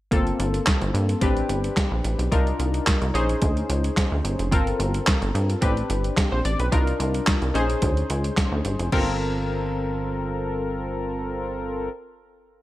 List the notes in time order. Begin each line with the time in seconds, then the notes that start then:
0.11 G1 A#3 C4 F4 A4, kick, closed hi-hat
0.27 closed hi-hat
0.39 G1, closed hi-hat
0.54 closed hi-hat
0.66 kick, snare, clap, closed hi-hat
0.81 G1, closed hi-hat
0.94 G2, closed hi-hat
1.09 closed hi-hat
1.21 A1 C4 D4 G4 B4, kick, closed hi-hat
1.37 closed hi-hat
1.49 G1, closed hi-hat
1.64 closed hi-hat
1.77 kick, snare, clap, closed hi-hat
1.91 A#1
2.04 A1, closed hi-hat
2.19 B1, closed hi-hat
2.32 C2 D4 D#4 F4 A#4, kick, closed hi-hat
2.47 closed hi-hat
2.59 C2, closed hi-hat
2.74 closed hi-hat
2.87 kick, snare, clap, closed hi-hat
3.02 C2, closed hi-hat
3.14 A#1 C#4 D#4 G#4 C5, closed hi-hat
3.29 closed hi-hat
3.42 D2, kick, closed hi-hat
3.57 closed hi-hat
3.69 C#2, closed hi-hat
3.84 closed hi-hat
3.97 kick, snare, clap, closed hi-hat
4.12 D2
4.24 G1, closed hi-hat
4.39 F1, closed hi-hat
4.51 G1 C4 F4 A4 A#4, kick, closed hi-hat
4.67 closed hi-hat
4.79 G1, closed hi-hat
4.94 closed hi-hat
5.07 kick, snare, clap, closed hi-hat
5.22 G1, closed hi-hat
5.35 G2, closed hi-hat
5.50 closed hi-hat
5.61 A1 C4 D4 G4 B4, kick, closed hi-hat
5.77 closed hi-hat
5.90 G1, closed hi-hat
6.04 closed hi-hat
6.17 kick, snare, clap, closed hi-hat
6.32 A#1 C5
6.45 A1 D5, closed hi-hat
6.59 B1 B4, closed hi-hat
6.72 C2 D4 D#4 F4 A#4, kick, closed hi-hat
6.87 closed hi-hat
7.00 C2, closed hi-hat
7.14 closed hi-hat
7.27 kick, snare, clap, closed hi-hat
7.42 C2, closed hi-hat
7.54 A#1 C#4 D#4 G#4 C5, closed hi-hat
7.70 closed hi-hat
7.82 D2, kick, closed hi-hat
7.97 closed hi-hat
8.10 C#2, closed hi-hat
8.24 closed hi-hat
8.37 kick, snare, clap, closed hi-hat
8.52 D2
8.65 G1, closed hi-hat
8.79 F1, closed hi-hat
8.92 G1 C4 F4 A4 A#4, kick, crash